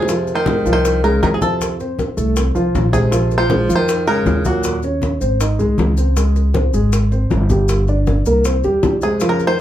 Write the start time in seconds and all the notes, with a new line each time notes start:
Already playing: F2 C3 G#4
0.02 low bongo
0.08 F3 F4, high bongo, high conga, maracas
0.27 high bongo, high conga, maracas
0.34 D#3 C5
0.46 G#3 G#4, high bongo, high conga, maracas
0.65 C2 F3 F4, maracas
0.72 D#3 C5
0.85 high bongo, high conga, maracas
1.03 C#3 G#3 G#4 A#4, high bongo, high conga, maracas
1.23 F2 D#3 A#4, high bongo, low bongo, high conga, maracas
1.34 C3 G#4
1.41 C3 F3 F4 A4, high bongo, high conga, maracas
1.61 high bongo, high conga, maracas
1.80 C4 C5, high bongo, high conga, maracas
1.99 high bongo, high conga, maracas
2.17 C2 A3 A4, high conga, maracas
2.36 C4 C5, high bongo, high conga, maracas
2.55 C2 F3 F4, high bongo, high conga, maracas
2.75 A#1, high bongo, low bongo, high conga, maracas
2.93 C3 G#3 G#4, high bongo, high conga, maracas
3.11 F3 F4, high bongo, high conga, maracas
3.31 high bongo, high conga, maracas
3.38 F3 C5
3.50 G#3 G#4, high bongo, high conga, maracas
3.69 F2 F3 F4, maracas
3.76 D#3 C5
3.88 high bongo, high conga, maracas
4.07 C#3 G#3 G#4 A#4, high bongo, high conga, maracas
4.26 D#2, high bongo, low bongo, high conga, maracas
4.45 A#2 F#3 F#4, high bongo, high conga, maracas
4.63 high bongo, high conga, maracas
4.83 C#4 C#5, high bongo, high conga, maracas
5.02 high bongo, high conga, maracas
5.21 G#1 C4 C5, high conga, maracas
5.40 D#4 D#5, high bongo, high conga, maracas
5.59 C2 G#3 G#4, high bongo, high conga, maracas
5.78 C#2, high bongo, low bongo, high conga, maracas
5.97 C4 C5, high bongo, maracas
6.16 G#3 G#4, high bongo, high conga, maracas
6.35 high bongo, high conga, maracas
6.54 C4 C5, high bongo, high conga, maracas
6.73 G#1 G#3 G#4, maracas
6.92 high bongo, high conga, maracas
7.11 C4 C5, high bongo, high conga, maracas
7.30 G1, high bongo, low bongo, high conga, maracas
7.50 G3 G4, high bongo, high conga, maracas
7.68 high bongo, high conga, maracas
7.87 D4 D5, high bongo, high conga, maracas
8.07 high bongo, high conga, maracas
8.26 C2 A#3 A#4, high conga, maracas
8.45 C4 C5, high bongo, high conga, maracas
8.64 E2 G3 G4, high bongo, high conga, maracas
8.83 F2, high bongo, low bongo, high conga, maracas
9.02 C3 G#3 G#4, high bongo, maracas
9.20 F3 F4, high bongo, high conga, maracas
9.28 C#3 A#4
9.39 high bongo, high conga, maracas
9.47 D#3 C5